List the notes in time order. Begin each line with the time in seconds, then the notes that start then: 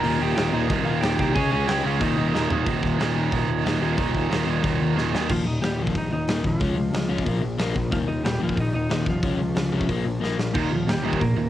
Already playing: A#4 A#5
0.03 D#1 D#2 A#2 D#3, open hi-hat
0.19 D#1 D#2 A#2 D#3 G5
0.23 G4
0.35 D#1 D#2 A#2 D#3 G4 G5, snare, open hi-hat
0.51 D#1 D#2 A#2 D#3 D#4 D#5
0.69 C2 D#2 A#2 D#3, kick, open hi-hat
0.85 D#1 D#2 A#2 D#3 F4 F5
1.01 D#1 D#2 A#2 D#3 G4 G5, snare, open hi-hat
1.18 C2 D#2 A#2 D#3 G4 G5, kick
1.34 C#2 C#3 G#3 C#4 G#4 G#5, kick, open hi-hat
1.50 C#2 C#3 G#3 C#4 G#4 G#5
1.66 C#2 C#3 G#3 C#4 G4 G5, snare, open hi-hat
1.83 C#2 C#3 G#3 C#4 F5
1.87 F4
1.99 D#1 D#2 A#2 D#3 D#4 D#5, kick, open hi-hat
2.16 D#1 D#2 A#2 D#3
2.34 D#1 D#2 A#2 D#3, snare
2.50 D#1 D#2 A#2 D#3, floor tom
2.66 D#1 D#2 A#2 D#3, kick, open hi-hat
2.83 D#1, kick
2.99 D#1 D#2 A#2 D#3, snare, open hi-hat
3.15 D#1 D#2 A#2 D#3
3.32 D#1 D#2 A#2 D#3, kick, open hi-hat
3.48 D#1
3.64 D#1 D#2 A#2 D#3, snare, open hi-hat
3.80 D#1 D#2 A#2 D#3
3.96 D#1 D#2 A#2 D#3, kick, open hi-hat
4.14 D#1, kick
4.29 D#1 D#2 A#2 D#3, snare, open hi-hat
4.46 D#1 D#2 A#2 D#3
4.63 D#1 D#2 A#2 D#3, kick, open hi-hat
4.81 D#2
4.96 D#1 D#2 A#2 D#3, snare
5.12 D#2 A#2 D#3, snare
5.29 D#1 D#2 A#2 D#3 F3 F4, kick, crash
5.45 D#1 D#2 A#2 D#4 D#5
5.61 D#1 D#2 A#2 G3 G4, snare, open hi-hat
5.78 D#1 D#2 A#2 D#3 F3 F4
5.87 kick
5.95 A#1 D#2 A#2 D#4 D#5, kick, open hi-hat
6.11 D#1 D#2 A#2 D#4 D#5
6.28 D#1 D#2 A#2 D#3, snare, open hi-hat
6.44 D#1 D#2 A#2 F3 F4, kick
6.60 C#2 C#3 G#3 C#4, kick, open hi-hat
6.76 C#2 C#3 G#3
6.93 C#2 C#3 G#3, snare, open hi-hat
7.09 C#2 C#3 G#3 C#4
7.18 kick
7.25 A#1 A#2 F3 A#3, kick, open hi-hat
7.42 A#1 A#2 F3
7.58 A#1 A#2 F3 A#3, snare, open hi-hat
7.75 A#1 A#2 F3, kick
7.91 D#1 D#2 A#2 D#3 F3 F4, kick, open hi-hat
8.06 D#1 D#2 A#2 D#4 D#5
8.24 D#1 D#2 A#2 G3 G4, snare, open hi-hat
8.40 D#1 D#2 A#2 D#3 F3 F4
8.49 kick
8.56 A#1 D#2 A#2, kick, open hi-hat
8.60 D#4 D#5
8.73 D#1 D#2 A#2 D#4 D#5
8.89 D#1 D#2 A#2 D#3, snare, open hi-hat
9.06 D#1 D#2 A#2 F3 F4, kick
9.22 C#2 C#3 G#3 C#4, kick, open hi-hat
9.38 C#2 C#3 G#3
9.55 C#2 C#3 G#3, snare, open hi-hat
9.72 C2 C#3 G#3 C#4
9.81 kick
9.88 A#1 A#2 F3 A#3, kick, open hi-hat
10.04 A#1 A#2 F3
10.20 A#1 A#2 F3 A#3, snare
10.37 A#1 A#2 F3, snare
10.53 D#1 D#2 A#2 D#3 D#4 D#5, kick, crash
10.70 D#1 D#2 A#2 F3
10.75 F4
10.86 D#1 D#2 A#2 G3 G4, snare, open hi-hat
11.03 D#1 D#2 A#2 D#3
11.13 kick
11.20 A#1 D#2 A#2 A#3 A#4, kick, open hi-hat
11.36 D#1 D#2 A#2